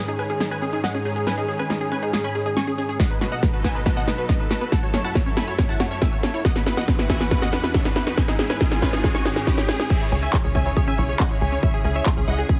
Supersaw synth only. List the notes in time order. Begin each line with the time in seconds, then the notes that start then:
0.08 G#4
0.19 B4 G#5
0.30 G#4
0.41 G#4
0.51 B4 G#5
0.62 G#4
0.73 G#4
0.84 D#5 F#5
0.94 G#4
1.05 G#4
1.16 G#4
1.27 B4 G#5
1.37 G#4
1.48 G#4
1.59 B4 G#5
1.70 G#4
1.81 G#4
1.92 B4 G#5
2.03 G#4
2.13 G#4
2.24 G#5 B5
2.35 G#4
2.46 G#4
2.57 G#5 C#6
2.67 G#4
2.78 G#4
2.89 G#4
3.00 D#5 F#5
3.10 B4
3.21 B4
3.32 D#5 F#5
3.43 B4
3.53 B4
3.64 B4 G#5
3.75 B4
3.86 B4
3.97 D#5 F#5
4.07 B4
4.18 B4
4.29 B4 D#5
4.40 B4
4.50 B4
4.61 B4
4.72 F#5 A5
4.83 C#5
4.94 C#5
5.04 F#5 A5
5.15 C#5
5.26 C#5
5.37 G#5 B5
5.48 C#5
5.58 C#5
5.69 F#5 A5
5.80 C#5
5.91 C#5
6.01 E5 G#5
6.12 C#5
6.23 C#5
6.34 C#5
6.45 D#5 F#5
6.56 B4
6.66 B4
6.77 D#5 F#5
6.88 B4
6.99 B4
7.10 E5 G#5
7.20 B4
7.31 B4
7.42 D#5 F#5
7.53 B4
7.64 B4
7.74 C#5 E5
7.85 B4
7.96 B4
8.07 B4
8.17 B4 G#5
8.28 G#4
8.39 G#4
8.50 B4 G#5
8.61 G#4
8.71 G#4
8.82 B4 G#5
8.93 G#4
9.04 G#4
9.15 G#5 C#6
9.25 G#4
9.36 G#4
9.47 B5 D#6
9.58 G#4
9.69 G#4
9.79 G#4
9.90 E5 G#5
10.01 C#5
10.12 C#5
10.23 E5 G#5
10.34 C#5
10.44 C#5
10.55 E5 G#5
10.66 C#5
10.77 C#5
10.88 E5 G#5
10.98 C#5
11.09 C#5
11.20 D#5 F#5
11.31 C#5
11.42 C#5
11.52 C#5
11.63 C#5 E5
11.74 G#4
11.85 G#4
11.96 C#5 E5
12.06 G#4
12.17 G#4
12.28 D#5 F#5
12.39 G#4
12.49 G#4